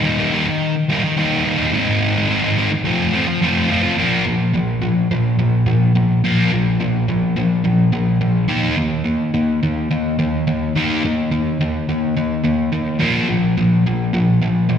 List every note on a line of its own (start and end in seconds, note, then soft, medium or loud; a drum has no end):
0.03 0.31 D#3 loud
0.03 0.19 G3 medium
0.03 0.18 A#3 medium
0.03 0.17 D#4 medium
0.18 0.32 G3 medium
0.18 0.33 A#3 medium
0.18 0.33 D#4 medium
0.32 0.74 D#3 medium
0.32 0.47 G3 medium
0.32 0.47 A#3 medium
0.32 0.47 D#4 medium
0.48 muted distorted electric guitar stroke medium
0.89 1.15 D#3 medium
0.89 1.03 G3 medium
0.89 1.03 A#3 medium
0.89 1.02 D#4 medium
1.04 muted distorted electric guitar stroke soft
1.16 1.43 D#3 loud
1.16 1.44 G3 medium
1.16 1.45 A#3 loud
1.16 1.45 D#4 loud
1.44 1.71 D#3 medium
1.44 1.59 G3 medium
1.44 1.58 A#3 medium
1.44 1.57 D#4 medium
1.58 1.72 G3 medium
1.58 1.71 A#3 medium
1.58 1.70 D#4 medium
1.72 2.26 G#2 medium
1.72 2.28 D#3 medium
1.72 2.16 G#3 loud
1.72 2.15 C4 medium
1.72 2.14 D#4 medium
2.15 2.28 G#3 medium
2.15 2.29 C4 medium
2.15 2.29 D#4 medium
2.28 2.70 G#2 medium
2.28 2.56 D#3 medium
2.28 2.43 G#3 loud
2.28 2.42 C4 loud
2.28 2.41 D#4 loud
2.42 2.56 G#3 medium
2.42 2.56 C4 medium
2.42 2.58 D#4 medium
2.57 2.71 D#3 medium
2.57 2.71 G#3 medium
2.57 2.71 C4 medium
2.57 2.70 D#4 medium
2.71 muted distorted electric guitar stroke soft
2.84 3.11 F3 medium
2.84 3.13 A3 medium
2.84 3.13 C4 medium
2.84 3.14 F4 medium
3.13 3.40 F3 medium
3.13 3.27 A3 medium
3.13 3.27 C4 medium
3.13 3.26 F4 medium
3.28 muted distorted electric guitar stroke soft
3.41 3.68 F3 loud
3.41 3.68 A3 loud
3.41 3.70 C4 medium
3.41 3.70 F4 medium
3.69 3.95 F3 medium
3.69 3.84 A3 medium
3.69 3.83 C4 medium
3.69 3.82 F4 medium
3.83 3.96 A3 medium
3.83 3.96 C4 medium
3.83 3.95 F4 medium
3.98 4.24 A#2 medium
3.98 4.24 F3 medium
3.98 4.25 A#3 medium
4.27 4.51 A#2 medium
4.27 4.51 F3 medium
4.54 4.79 A#2 medium
4.54 4.79 F3 medium
4.82 5.07 A#2 medium
4.82 5.07 F3 medium
5.11 5.36 A#2 medium
5.11 5.36 F3 medium
5.39 5.64 A#2 medium
5.39 5.64 F3 medium
5.66 5.92 A#2 medium
5.66 5.92 F3 medium
5.95 6.20 A#2 medium
5.95 6.21 F3 medium
6.24 6.50 A#2 medium
6.24 6.50 F3 medium
6.24 6.50 A#3 medium
6.52 6.77 A#2 medium
6.52 6.77 F3 medium
6.80 7.05 A#2 medium
6.80 7.05 F3 medium
7.08 7.33 A#2 medium
7.08 7.33 F3 medium
7.36 7.61 A#2 medium
7.36 7.61 F3 medium
7.64 7.89 A#2 medium
7.64 7.90 F3 medium
7.92 8.18 A#2 medium
7.92 8.18 F3 medium
8.21 8.46 A#2 medium
8.21 8.46 F3 medium
8.48 8.75 D#3 medium
8.48 8.75 A#3 medium
8.48 8.75 D#4 medium
8.77 9.02 D#3 medium
8.77 9.02 A#3 medium
9.04 9.30 D#3 medium
9.04 9.31 A#3 medium
9.34 9.59 D#3 medium
9.34 9.59 A#3 medium
9.63 9.88 D#3 medium
9.63 9.88 A#3 medium
9.91 10.16 D#3 medium
9.91 10.16 A#3 medium
10.19 10.44 D#3 medium
10.19 10.44 A#3 medium
10.47 10.72 D#3 medium
10.47 10.72 A#3 medium
10.76 11.02 D#3 medium
10.76 11.02 A#3 medium
10.76 11.02 D#4 medium
11.04 11.29 D#3 medium
11.04 11.29 A#3 medium
11.31 11.57 D#3 medium
11.31 11.57 A#3 medium
11.61 11.85 D#3 medium
11.61 11.85 A#3 medium
11.89 12.14 D#3 medium
11.89 12.14 A#3 medium
12.17 12.42 D#3 medium
12.17 12.42 A#3 medium
12.44 12.69 D#3 medium
12.44 12.70 A#3 medium
12.73 12.98 D#3 medium
12.73 12.98 A#3 medium
12.99 13.26 A#2 medium
12.99 13.27 F3 medium
12.99 13.27 A#3 medium
13.28 13.54 A#2 medium
13.28 13.54 F3 medium
13.57 13.82 A#2 medium
13.57 13.83 F3 medium
13.86 14.11 A#2 medium
13.86 14.11 F3 medium
14.13 14.39 A#2 medium
14.13 14.39 F3 medium
14.42 14.67 A#2 medium
14.42 14.67 F3 medium
14.69 14.78 A#2 medium
14.69 14.78 F3 medium